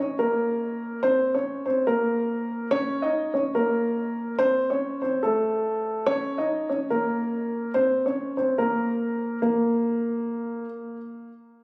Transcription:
0.00 C#4 C#5
0.19 A#3 A#4
1.03 C4 C5
1.34 C#4 C#5
1.66 C4 C5
1.87 A#3 A#4
2.71 C#4 C#5
3.02 D#4 D#5
3.34 C#4 C#5
3.55 A#3 A#4
4.39 C4 C5
4.70 C#4 C#5
5.02 C4 C5
5.23 A3 A4
6.06 C#4 C#5
6.38 D#4 D#5
6.69 C#4 C#5
6.90 A#3 A#4
7.74 C4 C5
8.06 C#4 C#5
8.37 C4 C5
8.58 A#3 A#4
9.42 A#3

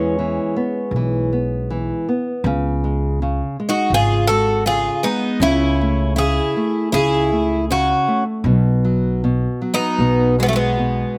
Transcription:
Already playing: E2 E3 G#3 B3 C#4
0.19 E3
0.56 B3
0.91 B1
0.96 E3
1.33 B3
1.70 E3
2.09 B3
2.44 C#2 C#3
2.84 G#3
3.22 C#3
3.60 G#3
3.69 D#4 F#4
3.90 G#1 C#3
3.94 F4 G#4
4.27 G#3 F#4 A4
4.66 C#3 F4 G#4
5.03 G#3 B3 D#4
5.40 C#2 C#3 C#4 E4
5.81 A3
6.16 C#3 E4 G#4
6.57 A3
6.92 C#2 C#3 E4 G#4
7.32 A3
7.71 C#3 C#4 F#4
8.08 A3
8.44 B1 B2
8.85 F#3
9.24 B2
9.62 F#3
9.74 B3 D#4
9.99 B1 B2
10.39 F#3 G#3
10.43 F#3 B3
10.48 A3
10.53 G#3 B3
10.79 B2

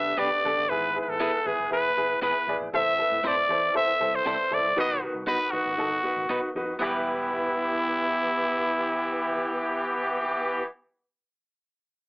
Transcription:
Already playing: B1 D3 B3 D4 G4 B4 E5
0.17 B1 B3 D4 G4 B4 D5
0.45 A#1 D4 G4 A4
0.58 A1
0.68 G#1 G#2 E3 E4 G#4 B4
0.94 E4 G#4 B4
1.01 B4
1.08 A1 A4
1.20 B3 E4 G#4 B4
1.45 G#1 E4 G#4 B4
1.58 F#1
1.70 E1 E4 G#4 B4
1.97 F#1 E4 G#4 B4
2.22 G#1 B3 E4 G#4 B4
2.47 B1 E4 G#4 D5
2.60 A#1
2.72 A1 A2 C4 E4 A4 C5 E5
2.99 E4 A4 B4
3.11 A2
3.23 A2 C4 E4 A4 C5 D5
3.49 E2 E4 A4 C5
3.74 E4 A4 C5 E5
3.88 muted fingered electric bass stroke
4.00 C2 E4 A4 C5
4.16 C5
4.25 C2 C4 E4 A4 C5 D5
4.51 C#2 E4 A4 C5 D5
4.64 C2
4.75 B1 B2 D#3 B3 D#4 F#4 B4
4.80 D#5
5.02 D#4 F#4 B4
5.15 C2
5.27 B3 D#4 F#4 B4
5.51 B1 D#4 F#4 B4
5.66 A1
5.78 G1 D#4 F#4 A4
6.04 D#4 F#4 B4, muted fingered electric bass stroke
6.17 A1
6.29 B1 B3 D#4 F#4 B4
6.55 F2 D#4 F#4 B4
6.79 E1 E2 E3 G3 B3 E4 G4
6.83 G4 B4

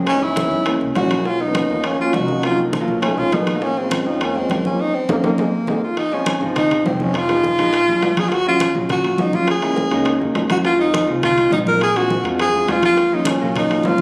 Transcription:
Already playing: C#2
0.07 G#3 C#4, high bongo, high conga, high timbale
0.14 G#3 B3 D#4 E4
0.22 C#4 E4, high bongo, high conga
0.36 high bongo, high conga, high timbale, low timbale
0.44 G#3 B3 D#4 E4
0.51 F#2, high conga
0.66 G#3 A#3 C#4 E4, high bongo, high conga, high timbale
0.80 C2, high bongo, high conga
0.95 B1 G#3 A#3 C#4 E4 F#4, high bongo, low bongo, high conga, high timbale, low timbale
1.11 high bongo, high conga, high timbale
1.18 G#3 A#3 C#4 E4
1.25 C#4 F4, high bongo, high conga
1.40 B3 D#4, high bongo, high conga
1.47 F3 A#3 C#4 D#4
1.55 high bongo, high conga, high timbale, low timbale
1.69 D#2 F3 A#3 C#4 D#4, high conga
1.84 A#3 C#4, high bongo, high conga, high timbale
1.99 F3 A#3 C#4 F4 F#4, high bongo, high conga
2.13 C2 D#4 F#4, high bongo, low bongo, high conga, high timbale, low timbale
2.28 F3 A#3 C#4 D#4, high bongo, high conga
2.43 C4 F4, high bongo, high conga, high timbale
2.51 F#3 A#3 D4 D#4
2.58 high bongo, high conga
2.73 high bongo, high conga, high timbale, low timbale
2.81 F#3 A#3 D4 F4
2.88 B1, high conga
3.02 F#3 A3 C#4 D#4 F4, high bongo, high conga, high timbale
3.17 B1 C#4 F4, high bongo, high conga
3.32 A#1 F#3 A3 B3 D#4 G#4, high bongo, low bongo, high conga, high timbale, low timbale
3.47 high bongo, high conga, high timbale
3.54 F#3 A3 D#4 F4
3.62 A#3 C#4, high bongo, high conga
3.77 G#3 C4, high bongo, high conga
3.84 G#3 C4 C#4 F4
3.91 high bongo, high conga, high timbale, low timbale
4.05 F2 G#3 C4 C#4 D#4 F4, high conga
4.21 A#3 C#4, high bongo, high conga, high timbale
4.35 G#3 C4 C#4 F4, high bongo, high conga
4.50 D#2 G#3 C4, high bongo, low bongo, high conga, high timbale, low timbale
4.65 G#3 A#3 C4 C#4 F4, high bongo, high conga
4.80 D#4
4.94 C4
5.09 D#2 A#3 C#4 D#4, high bongo, high conga, high timbale
5.22 D#2 A#3 C#4 D#4, high bongo, high conga, high timbale
5.38 G#1 G#3 C4 D#4, high bongo, high conga, high timbale
5.67 G#1 G#3 C4 D#4, high bongo, high conga, high timbale
5.83 F4
5.97 D#4, high bongo, high conga, high timbale
6.12 F3 G#3 C4 C#4 D#4, high bongo, high conga
6.26 high bongo, high conga, high timbale, low timbale
6.41 G#1 F3 G#3 C4 D#4, high bongo
6.56 D#4, high bongo, high conga, low conga, high timbale
6.71 F3 G#3 C4 D#4, high conga, low conga, high timbale
6.85 F1 C4, high bongo, low bongo, high conga, low timbale
7.00 F3 G#3 C4 C#4 D#4, high bongo, high conga
7.14 F4, high bongo, high conga, high timbale
7.29 F3 G#3 B3 D#4, high bongo, high conga, high timbale
7.44 high bongo, high conga, low timbale
7.58 A#1 F3 G#3 B3 D#4, high bongo, high conga, high timbale
7.73 high bongo, high conga, high timbale
7.87 D2 F#3 G#3 D4 F4, high conga
8.02 D#2, high bongo, low bongo, high conga, high timbale, low timbale
8.17 F#3 G#3 D4 F4 G#4, high bongo, high conga, high timbale
8.28 F4, high bongo, high conga, high timbale
8.33 F#4
8.46 F#3 G#3 C#4 F4, high bongo, high conga
8.60 high bongo, high conga, high timbale, low timbale
8.75 A#1 F#3 G#3 C#4 F4, high bongo
8.89 F#4, high bongo, high conga, low conga, high timbale
9.04 F#3 G#3 C#4 F4, high conga, high timbale
9.18 F#1 D#4, high bongo, low bongo, high conga, low timbale
9.33 F#3 G#3 C#4 F4, high bongo, high conga
9.47 G#4, high bongo, high conga, high timbale
9.62 G#3 A#3 C#4 E4, high bongo, high conga, high timbale
9.76 high bongo, high conga, low timbale
9.90 C#2 G#3 A#3 C#4 D#4, high bongo, high conga, high timbale
10.05 high bongo, high conga, high timbale
10.20 D#2 G#3 A#3 C#4 D#4, high conga
10.35 F2, high bongo, low bongo, high conga, high timbale, low timbale
10.50 G#3 A#3 C#4 E4 F#4, high bongo, high conga, high timbale
10.65 F4, high bongo, high conga, high timbale
10.78 G#3 C4 D#4 F4, high bongo, high conga
10.94 high bongo, high conga, high timbale, low timbale
11.07 C2 G#3 C4 D#4 F4, high bongo
11.23 F4, high bongo, high conga, low conga, high timbale
11.37 G#3 C4 D#4 F4, high conga, high timbale
11.51 A#1 D#4, high bongo, low bongo, high conga, low timbale
11.66 G#3 C4 D#4 F4 A#4, high bongo, high conga
11.81 G#4, high bongo, high conga, high timbale
11.95 G#3 C4 D4 F4 F#4, high bongo, high conga, high timbale
12.10 high bongo, high conga, low timbale
12.24 F2 G#3 C4 D4 F4, high bongo, high conga, high timbale
12.39 G#4, high bongo, high conga, high timbale
12.53 F2 G#3 C4 D4 F4, high conga
12.68 D#2 F4, high bongo, low bongo, high conga, high timbale, low timbale
12.82 G#3 C4 D4 F4, high bongo, high conga, high timbale
12.97 high bongo, high conga, high timbale
13.12 F#3 A#3 C#4 D#4 F4, high bongo, high conga
13.25 C#4, high bongo, high conga, high timbale, low timbale
13.40 A#1 F#3 A#3 C#4 F4, high bongo
13.55 D#4, high bongo, high conga, low conga, high timbale
13.69 F#3 A#3 C#4 F4, high conga, high timbale
13.83 G#1 F4, high bongo, low bongo, high conga, low timbale
13.98 high conga

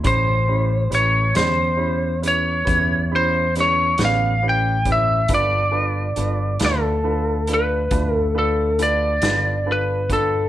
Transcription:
0.03 A1 C#4 E4 G4 C5 B5, kick, closed hi-hat
0.48 C#4 E4 G4 B5
0.90 A1 C#4 E4 G4 B4, closed hi-hat
0.95 C#5
1.34 E2 C#4 E4 G4 C5 B5, snare, closed hi-hat
1.77 C#4 E4 G4 B5
2.22 C#4 E4 G4 B4, closed hi-hat
2.28 C#5
2.65 E2 C#4 E4 G4 B4, kick, closed hi-hat
3.11 C#4 E4 G4 B5
3.16 C5
3.55 C#4 E4 G4 B4, snare, closed hi-hat
3.60 C#5
3.98 A1 B3 C#4 G4 B4, snare, closed hi-hat
4.05 F5
4.42 C#4 E4 G4 B4
4.49 G5
4.85 C#4 E4 G4 B4, kick, closed hi-hat
4.92 E5
5.28 G1 D4 F4 A4 B4, kick, closed hi-hat
5.34 D5
5.71 D4 F4 A4 B4
6.16 G1 D4 F4 A4 B4, closed hi-hat
6.59 D2 D4 F4 A4 B4, snare, closed hi-hat
6.66 A4
7.03 D4 F4 A4 B4
7.47 D4 F4 A4 B4, closed hi-hat
7.54 B4
7.91 D2 D4 F4 A4 B4, kick, closed hi-hat
8.16 A4
8.35 D4 F4 A4 B4
8.79 D4 F4 A4 B4 D5, closed hi-hat
9.22 G1 D4 F4 A4 B4, snare, closed hi-hat
9.66 D4 F4 A4 B4
9.72 B4
10.10 D4 F4 A4 B4, kick, closed hi-hat

